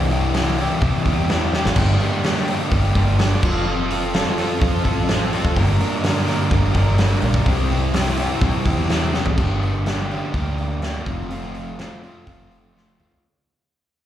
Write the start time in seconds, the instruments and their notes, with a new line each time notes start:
Already playing: fingered electric bass C2, overdriven electric guitar E3 G3 E4 G4
0.11 overdriven electric guitar C3 E3 G3 E4 G4, open hi-hat
0.34 overdriven electric guitar C3 E3 G3 E4 G4, snare, open hi-hat
0.58 overdriven electric guitar C3 E3 G3 E4 G4, open hi-hat
0.81 overdriven electric guitar C3 E3 G3 E4 G4, fingered electric bass C3, kick, open hi-hat
1.06 fingered electric bass E2, overdriven electric guitar C3 E3 G3 E4 G4, kick, open hi-hat
1.29 overdriven electric guitar C3 E3 G3 E4 G4, snare, open hi-hat
1.53 overdriven electric guitar C3 E3 G3 E4 G4, snare
1.65 fingered electric bass G#1, snare
1.76 fingered electric bass G1, overdriven electric guitar G2 D3 G3 A#3 D4 G4, kick, crash
2.00 overdriven electric guitar G2 D3 G3 A#3 D4 G4, open hi-hat
2.24 overdriven electric guitar G2 D3 G3 A#3 D4 G4, snare, open hi-hat
2.37 snare
2.47 overdriven electric guitar G2 D3 G3 A#3 D4 G4, open hi-hat
2.72 fingered electric bass G1, overdriven electric guitar G2 D3 G3 A#3 D4 G4, kick, open hi-hat
2.95 fingered electric bass G1, overdriven electric guitar G2 D3 G3 A#3 D4 G4, kick, open hi-hat
3.19 overdriven electric guitar G2 D3 G3 A#3 D4 G4, snare, open hi-hat
3.43 fingered electric bass F1, overdriven electric guitar F3 C4 F4 A4, kick, crash
3.66 overdriven electric guitar F3 C4 F4 A4
3.90 overdriven electric guitar F3 C4 F4 A4, open hi-hat
4.14 overdriven electric guitar F3 C4 F4 A4, snare, open hi-hat
4.38 overdriven electric guitar F3 C4 F4 A4, snare, open hi-hat
4.61 fingered electric bass F2, overdriven electric guitar F3 C4 F4 A4, kick, open hi-hat
4.84 fingered electric bass A1, overdriven electric guitar F3 C4 F4 A4, kick, open hi-hat
5.08 overdriven electric guitar F3 C4 F4 A4, snare, open hi-hat
5.33 overdriven electric guitar F3 C4 F4 A4, open hi-hat
5.45 fingered electric bass F1, kick
5.56 fingered electric bass G1, overdriven electric guitar G2 D3 G3 A#3 D4 A#4, kick, open hi-hat
5.79 overdriven electric guitar G2 D3 G3 A#3 D4 A#4, open hi-hat
6.03 overdriven electric guitar G2 D3 G3 A#3 D4 A#4, snare, open hi-hat
6.17 snare
6.27 overdriven electric guitar G2 D3 G3 A#3 D4 A#4, snare, open hi-hat
6.51 fingered electric bass G1, overdriven electric guitar G2 D3 G3 A#3 D4 A#4, kick, open hi-hat
6.74 fingered electric bass G1, overdriven electric guitar G2 D3 G3 A#3 D4 A#4, kick, open hi-hat
6.98 overdriven electric guitar G2 D3 G3 A#3 D4 A#4, snare, open hi-hat
7.21 fingered electric bass A#1, overdriven electric guitar G2 D3 G3 A#3 D4 A#4, open hi-hat
7.34 kick
7.46 fingered electric bass C2, overdriven electric guitar C3 G3 C4 E4 G4, kick, open hi-hat
7.70 overdriven electric guitar C3 G3 C4 E4 G4, open hi-hat
7.93 overdriven electric guitar C3 G3 C4 E4 G4, snare, open hi-hat
8.17 overdriven electric guitar C3 G3 C4 E4 G4, open hi-hat
8.41 fingered electric bass C3, overdriven electric guitar C3 G3 C4 E4 G4, kick, open hi-hat
8.65 fingered electric bass E2, overdriven electric guitar C3 G3 C4 E4 G4, kick, open hi-hat
8.89 overdriven electric guitar C3 G3 C4 E4 G4, snare, open hi-hat
9.13 overdriven electric guitar C3 G3 C4 E4 G4, snare
9.26 fingered electric bass A1, floor tom
9.37 fingered electric bass G1, overdriven electric guitar G2 D3 G3 A#3 D4 G4, kick, crash
9.63 open hi-hat
9.85 overdriven electric guitar G2 D3 G3 A#3 D4 G4, snare, open hi-hat
10.10 overdriven electric guitar G2 D3 G3 A#3 D4 G4, open hi-hat
10.33 fingered electric bass D2, overdriven electric guitar G2 D3 G3 A#3 D4 G4, kick, open hi-hat
10.58 open hi-hat
10.82 overdriven electric guitar G2 D3 G3 A#3 D4 G4, snare, open hi-hat
11.06 fingered electric bass F1, overdriven electric guitar F2 C3 F3 A3 C4 F4, kick, open hi-hat
11.30 overdriven electric guitar F2 C3 F3 A3 C4 F4, open hi-hat
11.55 open hi-hat
11.78 overdriven electric guitar F2 C3 F3 A3 C4 F4, snare, open hi-hat
12.03 overdriven electric guitar F2 C3 F3 A3 C4 F4, open hi-hat
12.26 fingered electric bass F1, overdriven electric guitar F2 C3 F3 A3 C4 F4, kick, open hi-hat
12.51 open hi-hat
12.74 overdriven electric guitar F2 C3 F3 A3 C4 F4, snare
12.99 overdriven electric guitar F2 C3 F3 A3 C4 F4, mid tom
13.12 floor tom